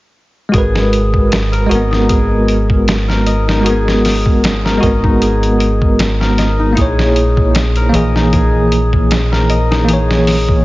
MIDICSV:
0, 0, Header, 1, 5, 480
1, 0, Start_track
1, 0, Key_signature, 5, "minor"
1, 0, Tempo, 779221
1, 332, Time_signature, 4, 2, 24, 8
1, 6560, End_track
2, 0, Start_track
2, 0, Title_t, "Harp"
2, 0, Program_c, 0, 46
2, 329, Note_on_c, 0, 68, 73
2, 938, Note_on_c, 0, 70, 65
2, 1047, Note_on_c, 0, 75, 66
2, 1176, Note_on_c, 0, 63, 71
2, 1285, Note_off_c, 0, 68, 0
2, 1288, Note_on_c, 0, 68, 71
2, 1896, Note_off_c, 0, 70, 0
2, 1899, Note_on_c, 0, 70, 66
2, 2008, Note_off_c, 0, 75, 0
2, 2011, Note_on_c, 0, 75, 69
2, 2139, Note_off_c, 0, 63, 0
2, 2142, Note_on_c, 0, 63, 64
2, 2251, Note_off_c, 0, 68, 0
2, 2253, Note_on_c, 0, 68, 76
2, 2861, Note_off_c, 0, 70, 0
2, 2863, Note_on_c, 0, 70, 66
2, 2970, Note_off_c, 0, 75, 0
2, 2973, Note_on_c, 0, 75, 65
2, 3100, Note_off_c, 0, 63, 0
2, 3102, Note_on_c, 0, 63, 67
2, 3210, Note_off_c, 0, 68, 0
2, 3212, Note_on_c, 0, 68, 77
2, 3819, Note_off_c, 0, 70, 0
2, 3821, Note_on_c, 0, 70, 69
2, 3931, Note_off_c, 0, 75, 0
2, 3933, Note_on_c, 0, 75, 66
2, 4060, Note_off_c, 0, 63, 0
2, 4062, Note_on_c, 0, 63, 67
2, 4171, Note_off_c, 0, 68, 0
2, 4173, Note_on_c, 0, 68, 77
2, 4781, Note_off_c, 0, 70, 0
2, 4784, Note_on_c, 0, 70, 68
2, 4890, Note_off_c, 0, 75, 0
2, 4893, Note_on_c, 0, 75, 72
2, 5021, Note_off_c, 0, 63, 0
2, 5024, Note_on_c, 0, 63, 69
2, 5129, Note_off_c, 0, 68, 0
2, 5132, Note_on_c, 0, 68, 80
2, 5738, Note_off_c, 0, 70, 0
2, 5740, Note_on_c, 0, 70, 67
2, 5848, Note_off_c, 0, 75, 0
2, 5851, Note_on_c, 0, 75, 66
2, 5977, Note_off_c, 0, 63, 0
2, 5980, Note_on_c, 0, 63, 73
2, 6087, Note_off_c, 0, 68, 0
2, 6089, Note_on_c, 0, 68, 76
2, 6560, Note_off_c, 0, 63, 0
2, 6560, Note_off_c, 0, 68, 0
2, 6560, Note_off_c, 0, 70, 0
2, 6560, Note_off_c, 0, 75, 0
2, 6560, End_track
3, 0, Start_track
3, 0, Title_t, "Tine electric piano"
3, 0, Program_c, 1, 4
3, 302, Note_on_c, 1, 56, 74
3, 321, Note_on_c, 1, 66, 68
3, 340, Note_on_c, 1, 70, 62
3, 357, Note_on_c, 1, 71, 77
3, 434, Control_c, 1, 64, 127
3, 1011, Note_off_c, 1, 56, 0
3, 1020, Note_off_c, 1, 66, 0
3, 1024, Note_on_c, 1, 56, 81
3, 1030, Note_off_c, 1, 70, 0
3, 1038, Note_off_c, 1, 71, 0
3, 1043, Note_on_c, 1, 66, 74
3, 1061, Note_on_c, 1, 70, 75
3, 1079, Note_on_c, 1, 59, 88
3, 2212, Note_off_c, 1, 56, 0
3, 2221, Note_off_c, 1, 66, 0
3, 2223, Note_on_c, 1, 56, 68
3, 2230, Note_off_c, 1, 70, 0
3, 2239, Note_off_c, 1, 59, 0
3, 2241, Note_on_c, 1, 66, 63
3, 2261, Note_on_c, 1, 70, 66
3, 2279, Note_on_c, 1, 59, 81
3, 2931, Note_off_c, 1, 56, 0
3, 2940, Note_off_c, 1, 66, 0
3, 2942, Note_on_c, 1, 56, 83
3, 2950, Note_off_c, 1, 70, 0
3, 2959, Note_off_c, 1, 59, 0
3, 2960, Note_on_c, 1, 66, 77
3, 2978, Note_on_c, 1, 70, 77
3, 2997, Note_on_c, 1, 59, 85
3, 4130, Note_off_c, 1, 56, 0
3, 4140, Note_off_c, 1, 66, 0
3, 4143, Note_on_c, 1, 58, 75
3, 4149, Note_off_c, 1, 70, 0
3, 4158, Note_off_c, 1, 59, 0
3, 4160, Note_on_c, 1, 64, 67
3, 4180, Note_on_c, 1, 68, 63
3, 4181, Control_c, 1, 64, 0
3, 4198, Note_on_c, 1, 73, 85
3, 4294, Control_c, 1, 64, 127
3, 4851, Note_off_c, 1, 58, 0
3, 4860, Note_off_c, 1, 64, 0
3, 4863, Note_on_c, 1, 58, 82
3, 4870, Note_off_c, 1, 68, 0
3, 4879, Note_off_c, 1, 73, 0
3, 4880, Note_on_c, 1, 52, 74
3, 4899, Note_on_c, 1, 68, 76
3, 6051, Note_off_c, 1, 58, 0
3, 6060, Note_off_c, 1, 52, 0
3, 6063, Note_on_c, 1, 58, 72
3, 6069, Note_off_c, 1, 68, 0
3, 6083, Note_on_c, 1, 52, 69
3, 6100, Note_on_c, 1, 68, 63
3, 6119, Note_on_c, 1, 73, 78
3, 6560, Note_off_c, 1, 52, 0
3, 6560, Note_off_c, 1, 58, 0
3, 6560, Note_off_c, 1, 68, 0
3, 6560, Note_off_c, 1, 73, 0
3, 6560, End_track
4, 0, Start_track
4, 0, Title_t, "Fingered electric bass"
4, 0, Program_c, 2, 33
4, 330, Note_on_c, 2, 32, 89
4, 1030, Note_off_c, 2, 32, 0
4, 1051, Note_on_c, 2, 32, 85
4, 2950, Note_off_c, 2, 32, 0
4, 2973, Note_on_c, 2, 32, 89
4, 4152, Note_off_c, 2, 32, 0
4, 4172, Note_on_c, 2, 34, 90
4, 4871, Note_off_c, 2, 34, 0
4, 4891, Note_on_c, 2, 34, 86
4, 6560, Note_off_c, 2, 34, 0
4, 6560, End_track
5, 0, Start_track
5, 0, Title_t, "Drums"
5, 330, Note_on_c, 9, 36, 90
5, 331, Note_on_c, 9, 42, 74
5, 392, Note_off_c, 9, 36, 0
5, 392, Note_off_c, 9, 42, 0
5, 465, Note_on_c, 9, 38, 45
5, 527, Note_off_c, 9, 38, 0
5, 572, Note_on_c, 9, 42, 56
5, 634, Note_off_c, 9, 42, 0
5, 701, Note_on_c, 9, 36, 80
5, 762, Note_off_c, 9, 36, 0
5, 813, Note_on_c, 9, 42, 82
5, 819, Note_on_c, 9, 38, 104
5, 875, Note_off_c, 9, 42, 0
5, 880, Note_off_c, 9, 38, 0
5, 943, Note_on_c, 9, 42, 36
5, 1005, Note_off_c, 9, 42, 0
5, 1054, Note_on_c, 9, 42, 62
5, 1116, Note_off_c, 9, 42, 0
5, 1188, Note_on_c, 9, 38, 30
5, 1249, Note_off_c, 9, 38, 0
5, 1290, Note_on_c, 9, 42, 79
5, 1291, Note_on_c, 9, 36, 100
5, 1351, Note_off_c, 9, 42, 0
5, 1352, Note_off_c, 9, 36, 0
5, 1530, Note_on_c, 9, 42, 54
5, 1592, Note_off_c, 9, 42, 0
5, 1662, Note_on_c, 9, 36, 81
5, 1723, Note_off_c, 9, 36, 0
5, 1773, Note_on_c, 9, 42, 74
5, 1778, Note_on_c, 9, 38, 100
5, 1835, Note_off_c, 9, 42, 0
5, 1840, Note_off_c, 9, 38, 0
5, 1908, Note_on_c, 9, 38, 32
5, 1969, Note_off_c, 9, 38, 0
5, 2011, Note_on_c, 9, 42, 59
5, 2073, Note_off_c, 9, 42, 0
5, 2149, Note_on_c, 9, 38, 48
5, 2211, Note_off_c, 9, 38, 0
5, 2254, Note_on_c, 9, 42, 79
5, 2315, Note_off_c, 9, 42, 0
5, 2391, Note_on_c, 9, 38, 42
5, 2452, Note_off_c, 9, 38, 0
5, 2494, Note_on_c, 9, 46, 64
5, 2499, Note_on_c, 9, 38, 41
5, 2556, Note_off_c, 9, 46, 0
5, 2561, Note_off_c, 9, 38, 0
5, 2623, Note_on_c, 9, 36, 85
5, 2685, Note_off_c, 9, 36, 0
5, 2734, Note_on_c, 9, 42, 79
5, 2740, Note_on_c, 9, 38, 112
5, 2796, Note_off_c, 9, 42, 0
5, 2801, Note_off_c, 9, 38, 0
5, 2869, Note_on_c, 9, 38, 42
5, 2931, Note_off_c, 9, 38, 0
5, 2974, Note_on_c, 9, 36, 84
5, 2974, Note_on_c, 9, 42, 66
5, 3035, Note_off_c, 9, 36, 0
5, 3036, Note_off_c, 9, 42, 0
5, 3104, Note_on_c, 9, 36, 83
5, 3165, Note_off_c, 9, 36, 0
5, 3214, Note_on_c, 9, 42, 79
5, 3276, Note_off_c, 9, 42, 0
5, 3345, Note_on_c, 9, 42, 37
5, 3407, Note_off_c, 9, 42, 0
5, 3452, Note_on_c, 9, 42, 60
5, 3513, Note_off_c, 9, 42, 0
5, 3583, Note_on_c, 9, 36, 89
5, 3645, Note_off_c, 9, 36, 0
5, 3692, Note_on_c, 9, 42, 82
5, 3697, Note_on_c, 9, 38, 100
5, 3753, Note_off_c, 9, 42, 0
5, 3759, Note_off_c, 9, 38, 0
5, 3827, Note_on_c, 9, 38, 34
5, 3888, Note_off_c, 9, 38, 0
5, 3931, Note_on_c, 9, 42, 62
5, 3936, Note_on_c, 9, 38, 33
5, 3992, Note_off_c, 9, 42, 0
5, 3998, Note_off_c, 9, 38, 0
5, 4170, Note_on_c, 9, 42, 79
5, 4172, Note_on_c, 9, 36, 99
5, 4232, Note_off_c, 9, 42, 0
5, 4234, Note_off_c, 9, 36, 0
5, 4307, Note_on_c, 9, 38, 46
5, 4368, Note_off_c, 9, 38, 0
5, 4411, Note_on_c, 9, 42, 55
5, 4472, Note_off_c, 9, 42, 0
5, 4541, Note_on_c, 9, 36, 85
5, 4603, Note_off_c, 9, 36, 0
5, 4650, Note_on_c, 9, 42, 82
5, 4655, Note_on_c, 9, 38, 100
5, 4711, Note_off_c, 9, 42, 0
5, 4717, Note_off_c, 9, 38, 0
5, 4778, Note_on_c, 9, 42, 38
5, 4840, Note_off_c, 9, 42, 0
5, 4890, Note_on_c, 9, 42, 67
5, 4952, Note_off_c, 9, 42, 0
5, 5025, Note_on_c, 9, 38, 34
5, 5087, Note_off_c, 9, 38, 0
5, 5130, Note_on_c, 9, 42, 82
5, 5131, Note_on_c, 9, 36, 99
5, 5192, Note_off_c, 9, 42, 0
5, 5193, Note_off_c, 9, 36, 0
5, 5371, Note_on_c, 9, 42, 57
5, 5433, Note_off_c, 9, 42, 0
5, 5501, Note_on_c, 9, 36, 81
5, 5563, Note_off_c, 9, 36, 0
5, 5611, Note_on_c, 9, 42, 84
5, 5616, Note_on_c, 9, 38, 105
5, 5672, Note_off_c, 9, 42, 0
5, 5678, Note_off_c, 9, 38, 0
5, 5746, Note_on_c, 9, 38, 35
5, 5808, Note_off_c, 9, 38, 0
5, 5850, Note_on_c, 9, 42, 65
5, 5911, Note_off_c, 9, 42, 0
5, 5986, Note_on_c, 9, 38, 47
5, 6048, Note_off_c, 9, 38, 0
5, 6089, Note_on_c, 9, 42, 81
5, 6151, Note_off_c, 9, 42, 0
5, 6226, Note_on_c, 9, 38, 43
5, 6287, Note_off_c, 9, 38, 0
5, 6328, Note_on_c, 9, 46, 67
5, 6333, Note_on_c, 9, 38, 43
5, 6390, Note_off_c, 9, 46, 0
5, 6395, Note_off_c, 9, 38, 0
5, 6459, Note_on_c, 9, 36, 85
5, 6521, Note_off_c, 9, 36, 0
5, 6560, End_track
0, 0, End_of_file